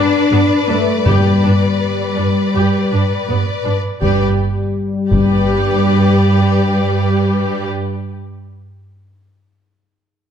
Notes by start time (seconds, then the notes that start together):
Already playing: D4 B4 D5
0.32 G2 B3
0.68 G2 A3 D4
1.06 G2 G3 G4
1.43 G2 D4
2.17 G2 D4
2.55 G2 G4
2.92 G2 D4
3.28 G2 B3
3.64 G2 D4
4.01 G2 G3 G4 B4 D5, taiko
5.09 G2 G3 G4 B4 D5, taiko